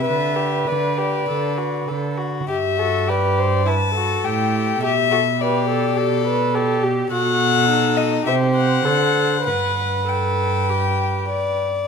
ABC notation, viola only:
X:1
M:4/4
L:1/8
Q:1/4=102
K:G
V:1 name="Viola"
B6- B z | G A B c B A3 | G A B A G B A G | F2 ^D2 c2 A2 |
B6- B z |]